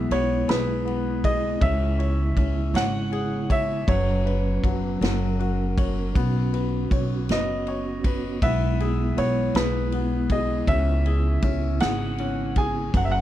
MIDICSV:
0, 0, Header, 1, 6, 480
1, 0, Start_track
1, 0, Tempo, 754717
1, 1025, Time_signature, 6, 3, 24, 8
1, 8402, End_track
2, 0, Start_track
2, 0, Title_t, "Grand piano"
2, 0, Program_c, 0, 0
2, 0, Note_on_c, 0, 76, 83
2, 76, Note_on_c, 0, 73, 88
2, 85, Note_off_c, 0, 76, 0
2, 313, Note_on_c, 0, 71, 80
2, 319, Note_off_c, 0, 73, 0
2, 792, Note_on_c, 0, 75, 91
2, 803, Note_off_c, 0, 71, 0
2, 1028, Note_on_c, 0, 76, 97
2, 1035, Note_off_c, 0, 75, 0
2, 1757, Note_on_c, 0, 78, 102
2, 1765, Note_off_c, 0, 76, 0
2, 2205, Note_off_c, 0, 78, 0
2, 2236, Note_on_c, 0, 76, 90
2, 2472, Note_on_c, 0, 73, 82
2, 2477, Note_off_c, 0, 76, 0
2, 2986, Note_off_c, 0, 73, 0
2, 4653, Note_on_c, 0, 75, 83
2, 5339, Note_off_c, 0, 75, 0
2, 5358, Note_on_c, 0, 76, 89
2, 5811, Note_off_c, 0, 76, 0
2, 5840, Note_on_c, 0, 73, 80
2, 6080, Note_on_c, 0, 71, 88
2, 6083, Note_off_c, 0, 73, 0
2, 6529, Note_off_c, 0, 71, 0
2, 6563, Note_on_c, 0, 75, 82
2, 6780, Note_off_c, 0, 75, 0
2, 6792, Note_on_c, 0, 76, 97
2, 7510, Note_on_c, 0, 78, 101
2, 7532, Note_off_c, 0, 76, 0
2, 7964, Note_off_c, 0, 78, 0
2, 7998, Note_on_c, 0, 80, 93
2, 8240, Note_off_c, 0, 80, 0
2, 8248, Note_on_c, 0, 78, 88
2, 8281, Note_off_c, 0, 78, 0
2, 8298, Note_on_c, 0, 76, 78
2, 8330, Note_off_c, 0, 76, 0
2, 8341, Note_on_c, 0, 78, 100
2, 8402, Note_off_c, 0, 78, 0
2, 8402, End_track
3, 0, Start_track
3, 0, Title_t, "Felt piano"
3, 0, Program_c, 1, 0
3, 0, Control_c, 1, 64, 127
3, 0, Note_on_c, 1, 59, 65
3, 0, Note_on_c, 1, 68, 51
3, 65, Note_off_c, 1, 59, 0
3, 75, Note_on_c, 1, 59, 58
3, 297, Note_off_c, 1, 68, 0
3, 306, Note_on_c, 1, 68, 54
3, 533, Note_off_c, 1, 59, 0
3, 542, Note_on_c, 1, 59, 54
3, 778, Note_off_c, 1, 68, 0
3, 788, Note_on_c, 1, 68, 58
3, 1008, Note_off_c, 1, 59, 0
3, 1018, Note_off_c, 1, 68, 0
3, 1024, Note_on_c, 1, 61, 66
3, 1031, Control_c, 1, 64, 0
3, 1141, Control_c, 1, 64, 127
3, 1266, Note_on_c, 1, 73, 56
3, 1500, Note_off_c, 1, 61, 0
3, 1510, Note_on_c, 1, 61, 56
3, 1736, Note_off_c, 1, 73, 0
3, 1746, Note_on_c, 1, 73, 63
3, 1987, Note_on_c, 1, 68, 57
3, 2215, Note_off_c, 1, 73, 0
3, 2225, Note_on_c, 1, 73, 59
3, 2442, Note_off_c, 1, 61, 0
3, 2451, Note_off_c, 1, 68, 0
3, 2458, Note_off_c, 1, 73, 0
3, 2466, Note_on_c, 1, 54, 61
3, 2471, Control_c, 1, 64, 0
3, 2580, Control_c, 1, 64, 127
3, 2708, Note_on_c, 1, 71, 56
3, 2939, Note_off_c, 1, 54, 0
3, 2948, Note_on_c, 1, 54, 61
3, 3175, Note_off_c, 1, 71, 0
3, 3180, Note_off_c, 1, 54, 0
3, 3190, Note_on_c, 1, 54, 68
3, 3197, Control_c, 1, 64, 0
3, 3323, Control_c, 1, 64, 127
3, 3431, Note_on_c, 1, 66, 55
3, 3673, Note_on_c, 1, 73, 58
3, 3892, Note_off_c, 1, 54, 0
3, 3900, Note_off_c, 1, 66, 0
3, 3907, Note_off_c, 1, 73, 0
3, 3912, Note_on_c, 1, 59, 63
3, 3921, Control_c, 1, 64, 0
3, 4037, Control_c, 1, 64, 127
3, 4156, Note_on_c, 1, 71, 48
3, 4400, Note_on_c, 1, 73, 54
3, 4640, Note_off_c, 1, 71, 0
3, 4650, Note_on_c, 1, 71, 51
3, 4876, Note_off_c, 1, 73, 0
3, 4886, Note_on_c, 1, 73, 51
3, 5115, Note_off_c, 1, 71, 0
3, 5124, Note_on_c, 1, 71, 54
3, 5330, Note_off_c, 1, 59, 0
3, 5347, Note_off_c, 1, 73, 0
3, 5353, Note_off_c, 1, 71, 0
3, 5360, Note_on_c, 1, 59, 69
3, 5365, Control_c, 1, 64, 0
3, 5472, Control_c, 1, 64, 127
3, 5600, Note_on_c, 1, 68, 57
3, 5823, Note_off_c, 1, 59, 0
3, 5832, Note_on_c, 1, 59, 58
3, 6072, Note_off_c, 1, 68, 0
3, 6081, Note_on_c, 1, 68, 59
3, 6307, Note_off_c, 1, 59, 0
3, 6316, Note_on_c, 1, 59, 56
3, 6549, Note_off_c, 1, 68, 0
3, 6559, Note_on_c, 1, 68, 59
3, 6778, Note_off_c, 1, 59, 0
3, 6787, Note_off_c, 1, 68, 0
3, 6796, Note_on_c, 1, 61, 70
3, 6799, Control_c, 1, 64, 0
3, 6922, Control_c, 1, 64, 127
3, 7035, Note_on_c, 1, 68, 55
3, 7263, Note_off_c, 1, 61, 0
3, 7273, Note_on_c, 1, 61, 63
3, 7506, Note_off_c, 1, 68, 0
3, 7515, Note_on_c, 1, 68, 54
3, 7748, Note_off_c, 1, 61, 0
3, 7758, Note_on_c, 1, 61, 55
3, 7985, Note_off_c, 1, 68, 0
3, 7995, Note_on_c, 1, 68, 58
3, 8219, Note_off_c, 1, 61, 0
3, 8225, Note_off_c, 1, 68, 0
3, 8236, Control_c, 1, 64, 0
3, 8236, Note_on_c, 1, 54, 67
3, 8358, Control_c, 1, 64, 127
3, 8402, Note_off_c, 1, 54, 0
3, 8402, End_track
4, 0, Start_track
4, 0, Title_t, "Tonewheel organ"
4, 0, Program_c, 2, 16
4, 0, Note_on_c, 2, 56, 65
4, 0, Note_on_c, 2, 59, 52
4, 0, Note_on_c, 2, 64, 76
4, 998, Note_off_c, 2, 59, 0
4, 1015, Note_off_c, 2, 64, 0
4, 1029, Note_on_c, 2, 49, 61
4, 1029, Note_on_c, 2, 64, 82
4, 2443, Note_off_c, 2, 56, 0
4, 2452, Note_off_c, 2, 49, 0
4, 2452, Note_off_c, 2, 64, 0
4, 2462, Note_on_c, 2, 71, 77
4, 2463, Note_on_c, 2, 61, 63
4, 2464, Note_on_c, 2, 54, 68
4, 3180, Note_off_c, 2, 71, 0
4, 3181, Note_off_c, 2, 61, 0
4, 3195, Note_on_c, 2, 70, 71
4, 3199, Note_on_c, 2, 61, 55
4, 3899, Note_off_c, 2, 54, 0
4, 3910, Note_off_c, 2, 70, 0
4, 3913, Note_on_c, 2, 59, 63
4, 3915, Note_on_c, 2, 66, 72
4, 5340, Note_off_c, 2, 61, 0
4, 5343, Note_off_c, 2, 66, 0
4, 5371, Note_on_c, 2, 56, 65
4, 5371, Note_on_c, 2, 64, 73
4, 6783, Note_off_c, 2, 56, 0
4, 6788, Note_on_c, 2, 49, 68
4, 8203, Note_off_c, 2, 59, 0
4, 8211, Note_off_c, 2, 64, 0
4, 8213, Note_off_c, 2, 49, 0
4, 8231, Note_on_c, 2, 61, 65
4, 8238, Note_on_c, 2, 71, 71
4, 8242, Note_on_c, 2, 54, 69
4, 8402, Note_off_c, 2, 54, 0
4, 8402, Note_off_c, 2, 61, 0
4, 8402, Note_off_c, 2, 71, 0
4, 8402, End_track
5, 0, Start_track
5, 0, Title_t, "Upright bass"
5, 0, Program_c, 3, 32
5, 68, Note_on_c, 3, 35, 85
5, 293, Note_off_c, 3, 35, 0
5, 309, Note_on_c, 3, 35, 78
5, 999, Note_off_c, 3, 35, 0
5, 1026, Note_on_c, 3, 37, 107
5, 1478, Note_off_c, 3, 37, 0
5, 1507, Note_on_c, 3, 37, 92
5, 1730, Note_off_c, 3, 37, 0
5, 1741, Note_on_c, 3, 32, 91
5, 2438, Note_off_c, 3, 32, 0
5, 2466, Note_on_c, 3, 30, 104
5, 2922, Note_off_c, 3, 30, 0
5, 2948, Note_on_c, 3, 30, 83
5, 3174, Note_off_c, 3, 30, 0
5, 3187, Note_on_c, 3, 30, 89
5, 3887, Note_off_c, 3, 30, 0
5, 3916, Note_on_c, 3, 35, 99
5, 4371, Note_off_c, 3, 35, 0
5, 4393, Note_on_c, 3, 35, 89
5, 4620, Note_off_c, 3, 35, 0
5, 4640, Note_on_c, 3, 30, 82
5, 5333, Note_off_c, 3, 30, 0
5, 5355, Note_on_c, 3, 35, 101
5, 5809, Note_off_c, 3, 35, 0
5, 5836, Note_on_c, 3, 35, 83
5, 6060, Note_off_c, 3, 35, 0
5, 6072, Note_on_c, 3, 35, 87
5, 6764, Note_off_c, 3, 35, 0
5, 6788, Note_on_c, 3, 37, 118
5, 7243, Note_off_c, 3, 37, 0
5, 7265, Note_on_c, 3, 37, 102
5, 7492, Note_off_c, 3, 37, 0
5, 7516, Note_on_c, 3, 32, 96
5, 8207, Note_off_c, 3, 32, 0
5, 8229, Note_on_c, 3, 30, 111
5, 8402, Note_off_c, 3, 30, 0
5, 8402, End_track
6, 0, Start_track
6, 0, Title_t, "Drums"
6, 71, Note_on_c, 9, 51, 65
6, 134, Note_off_c, 9, 51, 0
6, 310, Note_on_c, 9, 51, 71
6, 319, Note_on_c, 9, 38, 121
6, 374, Note_off_c, 9, 51, 0
6, 382, Note_off_c, 9, 38, 0
6, 556, Note_on_c, 9, 51, 42
6, 619, Note_off_c, 9, 51, 0
6, 790, Note_on_c, 9, 36, 84
6, 791, Note_on_c, 9, 51, 68
6, 853, Note_off_c, 9, 36, 0
6, 855, Note_off_c, 9, 51, 0
6, 1027, Note_on_c, 9, 36, 113
6, 1027, Note_on_c, 9, 51, 75
6, 1091, Note_off_c, 9, 36, 0
6, 1091, Note_off_c, 9, 51, 0
6, 1270, Note_on_c, 9, 51, 44
6, 1334, Note_off_c, 9, 51, 0
6, 1505, Note_on_c, 9, 36, 91
6, 1507, Note_on_c, 9, 51, 57
6, 1569, Note_off_c, 9, 36, 0
6, 1571, Note_off_c, 9, 51, 0
6, 1748, Note_on_c, 9, 51, 73
6, 1757, Note_on_c, 9, 38, 105
6, 1812, Note_off_c, 9, 51, 0
6, 1821, Note_off_c, 9, 38, 0
6, 1987, Note_on_c, 9, 51, 45
6, 2051, Note_off_c, 9, 51, 0
6, 2226, Note_on_c, 9, 36, 89
6, 2228, Note_on_c, 9, 51, 71
6, 2289, Note_off_c, 9, 36, 0
6, 2292, Note_off_c, 9, 51, 0
6, 2466, Note_on_c, 9, 36, 116
6, 2469, Note_on_c, 9, 51, 78
6, 2530, Note_off_c, 9, 36, 0
6, 2532, Note_off_c, 9, 51, 0
6, 2714, Note_on_c, 9, 51, 42
6, 2777, Note_off_c, 9, 51, 0
6, 2948, Note_on_c, 9, 36, 90
6, 2953, Note_on_c, 9, 51, 58
6, 3012, Note_off_c, 9, 36, 0
6, 3016, Note_off_c, 9, 51, 0
6, 3194, Note_on_c, 9, 51, 73
6, 3203, Note_on_c, 9, 38, 104
6, 3258, Note_off_c, 9, 51, 0
6, 3266, Note_off_c, 9, 38, 0
6, 3436, Note_on_c, 9, 51, 39
6, 3500, Note_off_c, 9, 51, 0
6, 3674, Note_on_c, 9, 36, 95
6, 3675, Note_on_c, 9, 51, 73
6, 3737, Note_off_c, 9, 36, 0
6, 3739, Note_off_c, 9, 51, 0
6, 3914, Note_on_c, 9, 36, 105
6, 3916, Note_on_c, 9, 51, 82
6, 3978, Note_off_c, 9, 36, 0
6, 3980, Note_off_c, 9, 51, 0
6, 4157, Note_on_c, 9, 51, 47
6, 4221, Note_off_c, 9, 51, 0
6, 4396, Note_on_c, 9, 36, 91
6, 4399, Note_on_c, 9, 51, 64
6, 4459, Note_off_c, 9, 36, 0
6, 4462, Note_off_c, 9, 51, 0
6, 4637, Note_on_c, 9, 51, 79
6, 4645, Note_on_c, 9, 38, 106
6, 4700, Note_off_c, 9, 51, 0
6, 4709, Note_off_c, 9, 38, 0
6, 4876, Note_on_c, 9, 51, 40
6, 4939, Note_off_c, 9, 51, 0
6, 5115, Note_on_c, 9, 51, 71
6, 5116, Note_on_c, 9, 36, 83
6, 5179, Note_off_c, 9, 36, 0
6, 5179, Note_off_c, 9, 51, 0
6, 5356, Note_on_c, 9, 36, 106
6, 5356, Note_on_c, 9, 51, 83
6, 5419, Note_off_c, 9, 36, 0
6, 5420, Note_off_c, 9, 51, 0
6, 5598, Note_on_c, 9, 51, 44
6, 5662, Note_off_c, 9, 51, 0
6, 5837, Note_on_c, 9, 51, 67
6, 5900, Note_off_c, 9, 51, 0
6, 6073, Note_on_c, 9, 51, 72
6, 6081, Note_on_c, 9, 38, 120
6, 6136, Note_off_c, 9, 51, 0
6, 6145, Note_off_c, 9, 38, 0
6, 6310, Note_on_c, 9, 51, 44
6, 6374, Note_off_c, 9, 51, 0
6, 6547, Note_on_c, 9, 51, 67
6, 6549, Note_on_c, 9, 36, 85
6, 6611, Note_off_c, 9, 51, 0
6, 6613, Note_off_c, 9, 36, 0
6, 6789, Note_on_c, 9, 36, 102
6, 6791, Note_on_c, 9, 51, 74
6, 6853, Note_off_c, 9, 36, 0
6, 6854, Note_off_c, 9, 51, 0
6, 7031, Note_on_c, 9, 51, 45
6, 7095, Note_off_c, 9, 51, 0
6, 7265, Note_on_c, 9, 51, 60
6, 7267, Note_on_c, 9, 36, 89
6, 7329, Note_off_c, 9, 51, 0
6, 7331, Note_off_c, 9, 36, 0
6, 7506, Note_on_c, 9, 51, 76
6, 7515, Note_on_c, 9, 38, 120
6, 7570, Note_off_c, 9, 51, 0
6, 7578, Note_off_c, 9, 38, 0
6, 7749, Note_on_c, 9, 51, 43
6, 7812, Note_off_c, 9, 51, 0
6, 7986, Note_on_c, 9, 51, 70
6, 7989, Note_on_c, 9, 36, 86
6, 8050, Note_off_c, 9, 51, 0
6, 8053, Note_off_c, 9, 36, 0
6, 8229, Note_on_c, 9, 36, 113
6, 8230, Note_on_c, 9, 51, 73
6, 8293, Note_off_c, 9, 36, 0
6, 8294, Note_off_c, 9, 51, 0
6, 8402, End_track
0, 0, End_of_file